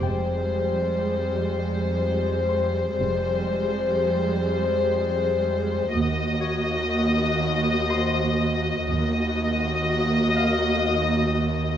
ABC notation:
X:1
M:3/4
L:1/8
Q:1/4=61
K:Fdor
V:1 name="Harp"
g4- g [cc']- | [cc']6 | z _d3 [cc']2- | [cc']3 f3 |]
V:2 name="Violin section"
c6 | c6 | e6 | e6 |]
V:3 name="Viola section"
[G,A,]6 | [G,A,]6 | [B,_G]6 | [B,_G]6 |]
V:4 name="Cello section" clef=bass
F,,6 | F,,6 | E,,6 | E,,6 |]
V:5 name="Double bass section" clef=bass
F,,,2 z4 | F,,,2 z4 | E,,2 z4 | E,,2 z4 |]